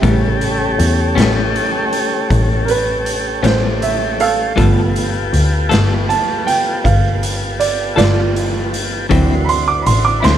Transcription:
0.00 0.75 A1 medium
0.00 0.25 A2 medium
0.00 4.53 C#3 soft
0.00 4.53 G3 soft
0.00 0.26 G3 medium
0.00 4.53 A3 medium
0.00 4.53 A3 soft
0.00 0.26 B3 medium
0.00 4.53 C#4 medium
0.00 0.26 C#4 medium
0.00 1.13 G4 medium
0.00 4.53 G4 medium
0.00 4.53 A4 medium
0.00 1.13 E5 medium
0.00 kick loud
0.00 closed hi-hat medium
0.41 closed hi-hat soft
0.78 1.14 E2 medium
0.78 closed hi-hat medium
1.15 1.51 A1 medium
1.15 1.40 A2 medium
1.15 1.40 G3 medium
1.15 1.39 B3 medium
1.15 1.39 C#4 medium
1.15 closed hi-hat medium
1.20 snare medium
1.56 closed hi-hat soft
1.93 closed hi-hat medium
2.30 3.40 A1 medium
2.30 kick medium
2.30 closed hi-hat medium
2.65 2.69 A#4 soft
2.65 closed hi-hat medium
2.70 3.42 B4 medium
3.06 closed hi-hat medium
3.43 4.53 A1 medium
3.43 3.67 A2 soft
3.43 3.67 G3 medium
3.43 3.66 B3 medium
3.43 3.66 C#4 medium
3.43 3.81 C5 medium
3.43 snare loud
3.43 closed hi-hat medium
3.82 4.19 E5 medium
3.82 closed hi-hat medium
4.20 5.67 A4 medium
4.20 5.67 F5 medium
4.20 closed hi-hat medium
4.56 5.29 G1 loud
4.56 5.08 F3 soft
4.56 4.79 G3 medium
4.56 5.08 A3 soft
4.56 4.80 B3 medium
4.56 9.07 B3 medium
4.56 5.08 B3 soft
4.56 9.07 F4 medium
4.56 4.80 F4 medium
4.56 9.07 G4 medium
4.56 9.07 A4 medium
4.56 4.80 A4 medium
4.56 kick loud
4.56 closed hi-hat medium
4.96 closed hi-hat soft
5.33 5.68 D2 medium
5.33 closed hi-hat medium
5.69 6.06 G1 medium
5.69 5.94 G3 medium
5.69 5.94 B3 medium
5.69 5.93 F4 medium
5.69 5.93 A4 medium
5.69 closed hi-hat medium
5.74 snare loud
6.09 6.46 A5 medium
6.09 closed hi-hat medium
6.47 6.83 G5 medium
6.47 closed hi-hat medium
6.84 7.94 G1 medium
6.84 7.58 F5 medium
6.84 kick medium
6.84 closed hi-hat medium
7.23 closed hi-hat medium
7.60 7.96 D5 medium
7.60 closed hi-hat medium
7.96 9.07 G1 medium
7.96 8.21 G3 soft
7.96 8.20 B3 medium
7.96 8.69 F4 medium
7.96 8.20 F4 medium
7.96 8.20 A4 medium
7.96 8.71 D5 medium
7.96 closed hi-hat medium
8.01 snare loud
8.36 closed hi-hat medium
8.74 closed hi-hat medium
9.09 9.83 D2 medium
9.09 9.33 D3 medium
9.09 9.61 E3 soft
9.09 9.33 F#3 medium
9.09 9.61 F#3 soft
9.09 9.34 C4 medium
9.09 9.62 C4 soft
9.09 10.38 D4 medium
9.09 10.38 E4 medium
9.09 9.34 E4 medium
9.09 10.38 F#4 medium
9.09 10.38 C5 medium
9.09 kick medium
9.09 closed hi-hat medium
9.45 9.49 B5 medium
9.49 9.67 C6 medium
9.49 closed hi-hat soft
9.68 9.85 D6 medium
9.82 9.87 B5 soft
9.86 10.21 A1 medium
9.86 10.04 C6 medium
9.86 closed hi-hat medium
10.05 10.23 D6 medium
10.20 10.38 D2 medium
10.20 10.38 C4 medium
10.20 10.38 E4 medium
10.20 10.25 B5 medium
10.20 closed hi-hat medium
10.24 10.38 D3 medium
10.24 10.38 F#3 medium
10.24 10.38 C6 medium
10.24 snare medium

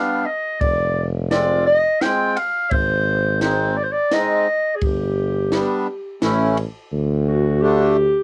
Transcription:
0.00 0.26 G3 medium
0.00 0.26 B3 medium
0.00 0.26 D4 medium
0.00 0.27 F5 medium
0.25 0.62 D#5 medium
0.60 1.87 F1 loud
0.60 1.04 D5 medium
0.60 kick medium
0.60 ride soft
1.31 1.66 G#3 medium
1.31 1.67 C4 medium
1.31 1.67 F4 medium
1.31 1.64 D5 loud
1.31 snare medium
1.31 ride soft
1.66 2.03 D#5 loud
2.01 2.37 G#3 medium
2.01 2.37 C4 medium
2.01 2.37 F4 medium
2.01 2.38 G5 medium
2.01 snare medium
2.01 ride soft
2.37 2.73 F5 medium
2.37 ride medium
2.71 3.98 G#1 loud
2.71 3.42 C5 loud
2.71 kick medium
2.71 ride medium
3.41 3.77 G#3 medium
3.41 3.77 C4 medium
3.41 3.77 D#4 medium
3.41 3.78 C5 medium
3.41 snare medium
3.41 ride soft
3.76 3.85 D5 loud
3.83 3.93 C5 medium
3.92 4.15 D5 loud
4.12 4.47 G#3 medium
4.12 4.47 C4 medium
4.12 4.47 D#4 medium
4.12 4.77 D#5 medium
4.12 snare medium
4.12 ride soft
4.76 4.85 G#4 medium
4.81 5.66 G1 medium
4.81 6.23 G4 medium
4.81 kick medium
4.81 ride soft
5.52 5.87 G3 medium
5.52 5.87 B3 medium
5.52 5.88 D4 medium
5.52 snare medium
5.52 ride soft
6.22 6.64 A1 loud
6.22 6.57 A3 medium
6.22 6.57 C#4 medium
6.22 6.57 E4 medium
6.22 snare medium
6.22 ride soft
6.57 ride soft
6.92 8.17 D2 loud
7.27 7.63 F#4 medium
7.61 7.96 D3 medium
7.61 7.97 A3 medium
7.61 7.97 D4 medium
7.61 8.23 G4 loud

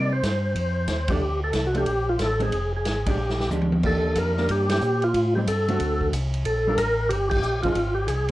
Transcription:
0.00 0.22 C3 medium
0.00 0.12 D5 medium
0.12 1.13 C5 medium
0.23 0.55 G2 medium
0.23 kick soft
0.23 snare medium
0.23 hi-hat pedal medium
0.23 ride medium
0.55 0.87 F2 medium
0.55 kick soft
0.55 ride medium
0.88 1.20 D#2 medium
0.88 kick soft
0.88 snare medium
0.88 hi-hat pedal medium
0.88 ride medium
1.08 1.20 F3 medium
1.08 1.21 A3 medium
1.08 1.21 D4 medium
1.08 1.41 G4 medium
1.08 kick medium
1.08 ride medium
1.20 1.52 D2 medium
1.44 1.68 A4 medium
1.53 1.86 C2 medium
1.53 kick soft
1.53 snare medium
1.53 hi-hat pedal soft
1.53 ride medium
1.67 1.76 F#4 medium
1.74 1.86 F3 medium
1.74 1.86 A3 medium
1.74 1.86 D4 medium
1.74 2.10 G4 loud
1.74 ride soft
1.86 2.18 A#1 medium
1.86 kick soft
1.86 ride medium
2.09 2.21 F4 medium
2.19 2.51 A1 medium
2.19 2.42 A4 medium
2.19 kick soft
2.19 snare medium
2.19 hi-hat pedal soft
2.19 ride medium
2.40 2.51 D#3 soft
2.40 2.51 G#3 medium
2.40 2.52 C4 medium
2.40 2.73 G#4 medium
2.40 ride soft
2.52 2.84 F1 medium
2.52 kick soft
2.52 ride medium
2.76 3.09 G#4 medium
2.85 3.17 G#1 medium
2.85 kick soft
2.85 snare medium
2.85 hi-hat pedal soft
2.85 ride medium
3.06 3.17 G#3 medium
3.06 3.18 D4 medium
3.06 3.18 G4 medium
3.06 3.50 G4 medium
3.06 kick medium
3.06 ride medium
3.18 3.50 A#1 medium
3.30 snare medium
3.40 snare medium
3.50 3.82 D2 medium
3.50 3.70 G#3 soft
3.50 3.70 D4 soft
3.50 3.70 G4 soft
3.50 hi-hat pedal medium
3.50 high tom medium
3.62 high tom medium
3.72 high tom medium
3.83 4.16 D#2 medium
3.83 4.33 D#3 medium
3.83 4.33 A#3 medium
3.83 4.34 D4 medium
3.83 4.34 G4 medium
3.83 4.19 A4 loud
3.83 kick medium
3.83 crash medium
4.15 4.48 F2 medium
4.15 4.51 A#4 loud
4.15 kick soft
4.15 hi-hat pedal medium
4.15 ride medium
4.37 4.80 D#3 medium
4.37 4.80 A#3 medium
4.37 4.80 D4 medium
4.37 4.80 G4 medium
4.37 snare soft
4.48 4.81 G2 medium
4.48 4.69 G4 loud
4.48 kick soft
4.48 ride medium
4.69 5.04 G4 loud
4.69 snare medium
4.69 ride medium
4.81 5.14 A#2 medium
4.81 hi-hat pedal medium
5.02 5.34 F4 medium
5.02 ride soft
5.14 5.46 A2 medium
5.14 kick soft
5.14 ride medium
5.35 5.47 G3 medium
5.35 5.47 C4 medium
5.35 5.48 D#4 medium
5.35 5.41 G4 medium
5.46 5.79 G2 medium
5.46 6.09 A4 medium
5.46 kick soft
5.46 hi-hat pedal medium
5.46 ride medium
5.68 6.11 D3 medium
5.68 6.11 A3 medium
5.68 6.11 C4 medium
5.68 6.11 F#4 medium
5.68 ride soft
5.80 6.12 D2 medium
5.80 kick soft
5.80 ride medium
6.01 kick soft
6.12 6.44 C2 loud
6.12 kick soft
6.12 hi-hat pedal medium
6.12 ride medium
6.34 ride soft
6.45 6.77 A#1 medium
6.45 6.80 A4 medium
6.45 kick soft
6.45 ride medium
6.67 6.78 G3 medium
6.67 6.78 D4 medium
6.67 6.79 F4 medium
6.67 6.79 A#4 medium
6.78 7.10 A1 medium
6.78 7.12 A#4 loud
6.78 kick soft
6.78 hi-hat pedal medium
6.78 ride medium
7.09 7.43 G1 medium
7.09 7.29 G4 loud
7.09 kick soft
7.09 ride medium
7.30 7.61 G4 loud
7.30 kick medium
7.30 crash medium
7.43 7.63 A#1 medium
7.43 hi-hat pedal medium
7.63 7.70 A#1 soft
7.63 7.76 F3 medium
7.63 7.76 C4 medium
7.63 7.76 D#4 medium
7.63 7.94 F4 medium
7.63 7.76 G#4 medium
7.63 kick medium
7.63 ride soft
7.75 8.08 G#1 medium
7.75 kick soft
7.75 ride medium
7.95 8.07 G4 medium
8.08 8.31 C2 medium
8.08 8.31 G#4 medium
8.08 kick soft
8.08 hi-hat pedal medium
8.08 ride medium

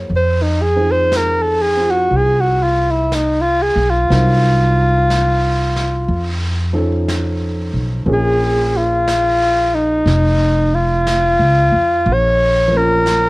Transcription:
0.00 0.10 F#3 soft
0.00 0.10 A#3 soft
0.00 0.11 E4 soft
0.00 0.11 G#4 soft
0.00 0.13 A#4 soft
0.00 0.13 C5 soft
0.00 0.30 C#5 soft
0.10 2.06 F2 medium
0.10 brush sweep soft
0.16 0.44 C5 medium
0.42 0.63 D#4 medium
0.62 0.93 G#4 medium
0.76 4.10 F3 soft
0.76 1.75 C4 soft
0.76 4.10 D#4 soft
0.76 4.10 G#4 soft
0.91 1.18 C5 medium
1.12 brush sweep soft
1.12 snare soft
1.12 hi-hat pedal soft
1.16 1.44 A#4 medium
1.42 1.63 A4 medium
1.62 1.92 G#4 medium
1.77 4.08 C4 soft
1.77 4.12 F4 soft
1.90 2.18 F#4 medium
2.11 3.72 C2 medium
2.11 brush sweep soft
2.16 2.42 G#4 medium
2.40 2.64 F#4 medium
2.63 2.92 F4 medium
2.91 3.16 E4 medium
3.12 3.43 D#4 medium
3.12 brush sweep soft
3.12 snare soft
3.12 hi-hat pedal soft
3.41 3.64 F4 medium
3.62 3.91 G#4 medium
3.76 4.07 B1 medium
3.90 6.40 F4 medium
4.10 6.05 C2 medium
4.10 6.09 F#3 soft
4.10 6.09 C4 soft
4.10 6.10 D#4 soft
4.10 6.09 A#4 soft
4.10 brush sweep soft
4.10 snare soft
5.10 brush sweep soft
5.10 snare soft
5.10 hi-hat pedal soft
5.76 snare soft
6.08 7.70 F2 medium
6.08 brush sweep soft
6.73 8.04 F3 soft
6.73 8.05 C#4 soft
6.73 8.07 D#4 soft
6.73 8.08 A4 medium
7.08 brush sweep soft
7.08 snare soft
7.08 hi-hat pedal soft
7.73 8.05 B1 medium
8.06 10.02 A#1 medium
8.06 12.04 F3 soft
8.06 12.05 A#3 soft
8.06 12.05 C#4 soft
8.06 12.05 G#4 medium
8.06 brush sweep soft
8.13 8.78 G#4 medium
8.77 9.76 F4 medium
9.08 brush sweep soft
9.08 snare soft
9.08 hi-hat pedal medium
9.74 10.76 D#4 medium
10.06 11.35 F1 medium
10.06 brush sweep soft
10.06 snare soft
10.74 12.15 F4 medium
11.07 brush sweep soft
11.07 snare soft
11.07 hi-hat pedal soft
11.39 11.70 C#2 medium
11.72 12.03 F2 medium
12.06 13.29 A#1 medium
12.06 brush sweep soft
12.13 12.78 C#5 medium
12.68 13.29 F3 medium
12.68 13.29 A#3 soft
12.74 13.29 C#4 soft
12.74 13.29 F4 medium
12.74 13.29 A#4 medium
13.06 brush sweep soft
13.06 snare soft
13.06 hi-hat pedal soft

